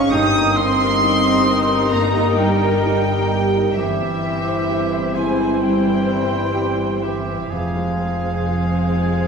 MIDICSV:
0, 0, Header, 1, 10, 480
1, 0, Start_track
1, 0, Tempo, 899550
1, 62, Time_signature, 4, 2, 24, 8
1, 1022, Tempo, 923077
1, 2942, Tempo, 937500
1, 3422, Tempo, 975610
1, 4765, End_track
2, 0, Start_track
2, 0, Title_t, "Flute section"
2, 0, Program_c, 0, 73
2, 0, Note_on_c, 0, 85, 72
2, 64, Note_off_c, 0, 85, 0
2, 67, Note_on_c, 0, 87, 91
2, 301, Note_off_c, 0, 87, 0
2, 309, Note_on_c, 0, 84, 72
2, 1024, Note_off_c, 0, 84, 0
2, 1024, Note_on_c, 0, 82, 59
2, 1256, Note_on_c, 0, 79, 67
2, 1261, Note_off_c, 0, 82, 0
2, 1873, Note_off_c, 0, 79, 0
2, 1996, Note_on_c, 0, 76, 74
2, 2692, Note_off_c, 0, 76, 0
2, 2704, Note_on_c, 0, 80, 61
2, 2939, Note_on_c, 0, 79, 45
2, 2941, Note_off_c, 0, 80, 0
2, 3643, Note_off_c, 0, 79, 0
2, 3656, Note_on_c, 0, 76, 46
2, 3897, Note_off_c, 0, 76, 0
2, 3900, Note_on_c, 0, 77, 51
2, 4765, Note_off_c, 0, 77, 0
2, 4765, End_track
3, 0, Start_track
3, 0, Title_t, "Violin section"
3, 0, Program_c, 1, 48
3, 0, Note_on_c, 1, 85, 83
3, 59, Note_on_c, 1, 87, 97
3, 62, Note_off_c, 1, 85, 0
3, 293, Note_on_c, 1, 84, 110
3, 302, Note_off_c, 1, 87, 0
3, 1016, Note_off_c, 1, 84, 0
3, 1024, Note_on_c, 1, 82, 82
3, 1251, Note_on_c, 1, 79, 81
3, 1261, Note_off_c, 1, 82, 0
3, 1971, Note_off_c, 1, 79, 0
3, 1976, Note_on_c, 1, 76, 70
3, 2696, Note_off_c, 1, 76, 0
3, 2701, Note_on_c, 1, 80, 54
3, 2940, Note_off_c, 1, 80, 0
3, 2940, Note_on_c, 1, 79, 61
3, 3658, Note_off_c, 1, 79, 0
3, 3659, Note_on_c, 1, 76, 50
3, 3896, Note_on_c, 1, 77, 52
3, 3898, Note_off_c, 1, 76, 0
3, 4765, Note_off_c, 1, 77, 0
3, 4765, End_track
4, 0, Start_track
4, 0, Title_t, "Oboe"
4, 0, Program_c, 2, 68
4, 0, Note_on_c, 2, 77, 75
4, 56, Note_off_c, 2, 77, 0
4, 59, Note_on_c, 2, 79, 81
4, 305, Note_on_c, 2, 75, 82
4, 313, Note_off_c, 2, 79, 0
4, 1013, Note_off_c, 2, 75, 0
4, 1017, Note_on_c, 2, 75, 66
4, 1269, Note_on_c, 2, 70, 60
4, 1276, Note_off_c, 2, 75, 0
4, 1848, Note_off_c, 2, 70, 0
4, 1992, Note_on_c, 2, 67, 69
4, 2707, Note_on_c, 2, 72, 55
4, 2715, Note_off_c, 2, 67, 0
4, 2943, Note_off_c, 2, 72, 0
4, 2947, Note_on_c, 2, 72, 57
4, 3664, Note_on_c, 2, 67, 47
4, 3671, Note_off_c, 2, 72, 0
4, 3896, Note_on_c, 2, 68, 52
4, 3903, Note_off_c, 2, 67, 0
4, 4765, Note_off_c, 2, 68, 0
4, 4765, End_track
5, 0, Start_track
5, 0, Title_t, "Violin section"
5, 0, Program_c, 3, 48
5, 63, Note_on_c, 3, 70, 88
5, 64, Note_on_c, 3, 63, 84
5, 1969, Note_off_c, 3, 70, 0
5, 1970, Note_off_c, 3, 63, 0
5, 1990, Note_on_c, 3, 72, 75
5, 1995, Note_on_c, 3, 64, 65
5, 3878, Note_off_c, 3, 72, 0
5, 3880, Note_off_c, 3, 64, 0
5, 3906, Note_on_c, 3, 68, 57
5, 3910, Note_on_c, 3, 72, 53
5, 4765, Note_off_c, 3, 68, 0
5, 4765, Note_off_c, 3, 72, 0
5, 4765, End_track
6, 0, Start_track
6, 0, Title_t, "Grand piano"
6, 0, Program_c, 4, 0
6, 0, Control_c, 4, 64, 127
6, 0, Note_on_c, 4, 51, 52
6, 0, Note_on_c, 4, 60, 53
6, 0, Note_on_c, 4, 63, 53
6, 0, Note_on_c, 4, 68, 48
6, 0, Note_on_c, 4, 72, 61
6, 0, Note_on_c, 4, 75, 51
6, 67, Note_off_c, 4, 68, 0
6, 68, Note_on_c, 4, 43, 71
6, 71, Control_c, 4, 64, 0
6, 72, Note_off_c, 4, 63, 0
6, 74, Note_off_c, 4, 51, 0
6, 74, Note_off_c, 4, 75, 0
6, 75, Note_off_c, 4, 60, 0
6, 76, Note_off_c, 4, 72, 0
6, 154, Control_c, 4, 64, 127
6, 193, Note_on_c, 4, 58, 51
6, 310, Note_on_c, 4, 63, 50
6, 380, Note_off_c, 4, 58, 0
6, 429, Note_on_c, 4, 70, 49
6, 498, Note_off_c, 4, 63, 0
6, 550, Note_on_c, 4, 63, 52
6, 617, Note_off_c, 4, 70, 0
6, 668, Note_on_c, 4, 75, 49
6, 737, Note_off_c, 4, 63, 0
6, 788, Note_on_c, 4, 70, 45
6, 856, Note_off_c, 4, 75, 0
6, 905, Note_on_c, 4, 63, 49
6, 977, Note_off_c, 4, 70, 0
6, 1003, Note_off_c, 4, 43, 0
6, 1026, Note_on_c, 4, 43, 47
6, 1094, Note_off_c, 4, 63, 0
6, 1143, Note_on_c, 4, 58, 49
6, 1264, Note_on_c, 4, 63, 53
6, 1334, Note_off_c, 4, 58, 0
6, 1383, Note_on_c, 4, 70, 43
6, 1457, Note_off_c, 4, 63, 0
6, 1511, Note_on_c, 4, 63, 53
6, 1578, Note_off_c, 4, 70, 0
6, 1636, Note_on_c, 4, 75, 44
6, 1703, Note_off_c, 4, 63, 0
6, 1763, Note_on_c, 4, 70, 49
6, 1826, Note_off_c, 4, 75, 0
6, 1881, Note_on_c, 4, 63, 37
6, 1949, Note_off_c, 4, 70, 0
6, 1971, Note_off_c, 4, 43, 0
6, 1995, Note_off_c, 4, 63, 0
6, 2000, Control_c, 4, 64, 0
6, 2091, Control_c, 4, 64, 127
6, 2114, Note_on_c, 4, 55, 44
6, 2237, Note_on_c, 4, 60, 38
6, 2303, Note_off_c, 4, 55, 0
6, 2354, Note_on_c, 4, 72, 43
6, 2423, Note_off_c, 4, 60, 0
6, 2466, Note_on_c, 4, 67, 40
6, 2540, Note_off_c, 4, 72, 0
6, 2587, Note_on_c, 4, 72, 41
6, 2656, Note_off_c, 4, 67, 0
6, 2711, Note_on_c, 4, 64, 42
6, 2775, Note_off_c, 4, 72, 0
6, 2822, Note_on_c, 4, 72, 41
6, 2897, Note_off_c, 4, 64, 0
6, 2946, Note_on_c, 4, 52, 36
6, 3011, Note_off_c, 4, 72, 0
6, 3067, Note_on_c, 4, 55, 36
6, 3133, Note_off_c, 4, 52, 0
6, 3183, Note_on_c, 4, 60, 39
6, 3255, Note_off_c, 4, 55, 0
6, 3300, Note_on_c, 4, 72, 33
6, 3374, Note_off_c, 4, 60, 0
6, 3419, Note_on_c, 4, 67, 42
6, 3493, Note_off_c, 4, 72, 0
6, 3541, Note_on_c, 4, 72, 37
6, 3610, Note_off_c, 4, 67, 0
6, 3660, Note_on_c, 4, 67, 32
6, 3731, Note_off_c, 4, 72, 0
6, 3783, Note_on_c, 4, 72, 30
6, 3851, Note_off_c, 4, 67, 0
6, 3897, Note_on_c, 4, 41, 41
6, 3900, Note_off_c, 4, 72, 0
6, 3907, Control_c, 4, 64, 0
6, 3982, Control_c, 4, 64, 127
6, 4017, Note_on_c, 4, 56, 34
6, 4133, Note_on_c, 4, 60, 30
6, 4210, Note_off_c, 4, 56, 0
6, 4254, Note_on_c, 4, 72, 31
6, 4329, Note_off_c, 4, 60, 0
6, 4374, Note_on_c, 4, 68, 30
6, 4449, Note_off_c, 4, 72, 0
6, 4493, Note_on_c, 4, 72, 32
6, 4570, Note_off_c, 4, 68, 0
6, 4612, Note_on_c, 4, 68, 32
6, 4689, Note_off_c, 4, 72, 0
6, 4730, Note_on_c, 4, 72, 29
6, 4765, Note_off_c, 4, 41, 0
6, 4765, Note_off_c, 4, 68, 0
6, 4765, Note_off_c, 4, 72, 0
6, 4765, End_track
7, 0, Start_track
7, 0, Title_t, "Viola section"
7, 0, Program_c, 5, 48
7, 65, Note_on_c, 5, 55, 80
7, 67, Note_on_c, 5, 63, 77
7, 1970, Note_off_c, 5, 55, 0
7, 1971, Note_off_c, 5, 63, 0
7, 1993, Note_on_c, 5, 60, 67
7, 1994, Note_on_c, 5, 52, 60
7, 3880, Note_off_c, 5, 52, 0
7, 3880, Note_off_c, 5, 60, 0
7, 3900, Note_on_c, 5, 60, 49
7, 3901, Note_on_c, 5, 56, 55
7, 4765, Note_off_c, 5, 56, 0
7, 4765, Note_off_c, 5, 60, 0
7, 4765, End_track
8, 0, Start_track
8, 0, Title_t, "Cello section"
8, 0, Program_c, 6, 48
8, 0, Note_on_c, 6, 61, 78
8, 64, Note_off_c, 6, 61, 0
8, 64, Note_on_c, 6, 63, 76
8, 304, Note_off_c, 6, 63, 0
8, 309, Note_on_c, 6, 60, 76
8, 1024, Note_off_c, 6, 60, 0
8, 1026, Note_on_c, 6, 58, 62
8, 1262, Note_off_c, 6, 58, 0
8, 1268, Note_on_c, 6, 55, 68
8, 1979, Note_off_c, 6, 55, 0
8, 1996, Note_on_c, 6, 52, 57
8, 2703, Note_on_c, 6, 56, 48
8, 2706, Note_off_c, 6, 52, 0
8, 2936, Note_off_c, 6, 56, 0
8, 2943, Note_on_c, 6, 55, 48
8, 3660, Note_off_c, 6, 55, 0
8, 3661, Note_on_c, 6, 52, 49
8, 3894, Note_on_c, 6, 53, 40
8, 3899, Note_off_c, 6, 52, 0
8, 4765, Note_off_c, 6, 53, 0
8, 4765, End_track
9, 0, Start_track
9, 0, Title_t, "French horn section"
9, 0, Program_c, 7, 60
9, 0, Note_on_c, 7, 61, 84
9, 59, Note_off_c, 7, 61, 0
9, 71, Note_on_c, 7, 63, 75
9, 303, Note_off_c, 7, 63, 0
9, 318, Note_on_c, 7, 60, 84
9, 1026, Note_on_c, 7, 58, 64
9, 1029, Note_off_c, 7, 60, 0
9, 1262, Note_off_c, 7, 58, 0
9, 1263, Note_on_c, 7, 55, 72
9, 1991, Note_off_c, 7, 55, 0
9, 1994, Note_on_c, 7, 52, 70
9, 2691, Note_off_c, 7, 52, 0
9, 2715, Note_on_c, 7, 56, 53
9, 2947, Note_off_c, 7, 56, 0
9, 2958, Note_on_c, 7, 55, 52
9, 3582, Note_off_c, 7, 55, 0
9, 3665, Note_on_c, 7, 52, 43
9, 3897, Note_off_c, 7, 52, 0
9, 3903, Note_on_c, 7, 53, 48
9, 4765, Note_off_c, 7, 53, 0
9, 4765, End_track
10, 0, Start_track
10, 0, Title_t, "Double bass section"
10, 0, Program_c, 8, 48
10, 0, Note_on_c, 8, 32, 77
10, 63, Note_off_c, 8, 32, 0
10, 66, Note_on_c, 8, 31, 74
10, 1971, Note_off_c, 8, 31, 0
10, 1993, Note_on_c, 8, 31, 59
10, 3880, Note_off_c, 8, 31, 0
10, 3903, Note_on_c, 8, 29, 48
10, 4765, Note_off_c, 8, 29, 0
10, 4765, End_track
0, 0, End_of_file